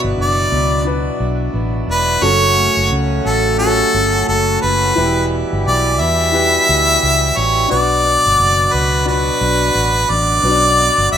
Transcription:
Already playing: B2 F#3 B3 D4 E4 F#4 B4 D5
0.04 G1
0.16 F#1 D4
0.22 D5
0.52 C#2 B3
0.84 D4 F#4 B4
1.19 B1 D4
1.53 A1 B3
1.88 E1 D4 B4
2.21 F#1 F#2 A2 C#3 C#4 F#4 A4 C#5
2.55 A3
2.77 F#1
2.90 C#2 C#4
3.24 A1 A3 A4
3.58 C#4 F#4 G4 A4
3.67 A4
3.93 G1 C#4
4.26 F#1 A3 A4
4.62 F#1 C#4 B4
4.95 E1 B2 E3 G3 E4 G4 B4
5.31 B3
5.53 G1
5.65 B1 E4 D5
5.99 E2 B3 E5
6.32 E4 G4 B4
6.69 D2 E4
7.03 C#2 B3
7.37 A1 E4 C#5
7.68 B1 B2 D4 F#4 B4 D5
7.73 F#3 D4 F#4
8.07 B3
8.26 G1
8.40 F#1 D4
8.73 C#2 B3 B4
9.05 D4 F#4 B4
9.10 F#4
9.41 B1 D4
9.75 A1 B3
10.10 A1 D4 D5
10.42 B1 B2 C#4 F#4 B4
10.49 D4
10.80 B3
10.98 G1
11.12 F#1 D4 E5

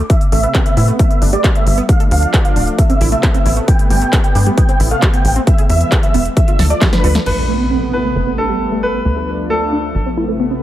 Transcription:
0.10 C3 A3 B3 E5, kick, closed hi-hat
0.21 closed hi-hat
0.32 A1 A3 E5, open hi-hat
0.43 B3, closed hi-hat
0.55 C4, kick, clap, closed hi-hat
0.66 E5, closed hi-hat
0.77 A2 E4, open hi-hat
0.88 A3, closed hi-hat
0.99 G3 A3 E5, kick, closed hi-hat
1.11 B3, closed hi-hat
1.22 G1 D4, open hi-hat
1.33 G3 D5, closed hi-hat
1.44 kick, clap, closed hi-hat
1.55 A3 E5, closed hi-hat
1.67 G1, open hi-hat
1.78 B3, closed hi-hat
1.89 F3 D4 F5, kick, closed hi-hat
2.00 A4, closed hi-hat
2.11 D2 F5, open hi-hat
2.23 closed hi-hat
2.34 A3, kick, clap, closed hi-hat
2.45 F5, closed hi-hat
2.56 D1 D4, open hi-hat
2.67 closed hi-hat
2.78 C3 B3 E5, kick, closed hi-hat
2.90 C4, closed hi-hat
3.01 A1 E4, open hi-hat
3.12 A3 E5, closed hi-hat
3.23 B3, kick, clap, closed hi-hat
3.34 C4 E5, closed hi-hat
3.46 A1 E4, open hi-hat
3.57 A3, closed hi-hat
3.68 G3 G5, kick, closed hi-hat
3.79 closed hi-hat
3.90 G1 G3 G5, open hi-hat
4.02 A3, closed hi-hat
4.13 B3, kick, clap, closed hi-hat
4.24 G5, closed hi-hat
4.35 G2 D4, open hi-hat
4.46 G3, closed hi-hat
4.57 C3 B3 G5, kick, closed hi-hat
4.69 C4, closed hi-hat
4.80 A1 E4, open hi-hat
4.91 A3 F5, closed hi-hat
5.02 kick, clap, closed hi-hat
5.13 B3 G5, closed hi-hat
5.25 A1, open hi-hat
5.36 C4, closed hi-hat
5.47 E3 G#3 E5, kick, closed hi-hat
5.58 G#4, closed hi-hat
5.70 E2 E5, open hi-hat
5.81 closed hi-hat
5.92 G#3, kick, clap, closed hi-hat
6.03 E5, closed hi-hat
6.14 E1 B3, open hi-hat
6.25 closed hi-hat
6.37 F3 A3 D4 E5, kick, closed hi-hat
6.48 F4, closed hi-hat
6.59 D2 A4, snare, open hi-hat
6.70 A3 D5, closed hi-hat
6.81 D4, kick, snare, clap, closed hi-hat
6.93 F4 B4, snare, closed hi-hat
7.04 D2 A4, open hi-hat
7.15 A3, snare, closed hi-hat
7.26 A1 C3 A3 B3 B4, crash, impact
7.49 A3
7.60 B3
7.71 C4
7.93 E4 B4
8.05 A3
8.16 G1 G3 A3
8.27 B3
8.38 D4 A4
8.49 G3
8.72 A3
8.83 B4
8.94 B3
9.05 D2 F3 D4
9.17 A4
9.50 A3 A4
9.73 D4
9.95 A1 C3 B3
10.06 C4
10.17 E4
10.29 A3
10.40 B3
10.51 C4

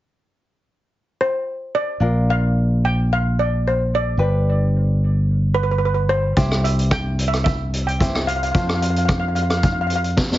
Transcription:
1.21 C5
1.75 D5
2.00 A#1 D4 F4 A#4
2.30 F5
2.85 G5
3.13 F5
3.39 D5
3.68 C5
3.95 D5
4.17 G1 D4 G4 B4
5.54 B4
5.63 B4
5.71 B4
5.78 B4
5.85 B4
5.94 B4
6.09 C5
6.37 C2 E4 G4 C5, kick, closed hi-hat
6.51 cross-stick
6.64 E5, closed hi-hat
6.79 closed hi-hat
6.91 G5, kick, cross-stick, closed hi-hat
7.19 closed hi-hat
7.28 E5
7.33 cross-stick, closed hi-hat
7.44 E5, kick, closed hi-hat
7.74 closed hi-hat
7.87 G5, closed hi-hat
8.00 E4 G4 C5, kick, closed hi-hat
8.15 cross-stick
8.27 F5, closed hi-hat
8.36 F5
8.43 F5, closed hi-hat
8.52 F2 F4 A4 C5 F5, kick, closed hi-hat
8.58 F5
8.67 F5, cross-stick
8.75 F5
8.82 F5, closed hi-hat
8.90 F5
8.96 F5, closed hi-hat
9.05 F5, kick, cross-stick, closed hi-hat
9.12 F5
9.20 F5
9.28 F5
9.35 F5, closed hi-hat
9.43 F5
9.50 F5, cross-stick, closed hi-hat
9.57 F5
9.63 F5, kick, closed hi-hat
9.72 F5
9.81 F5
9.87 F5, closed hi-hat
9.96 F5
10.04 closed hi-hat
10.17 kick, snare
10.32 snare

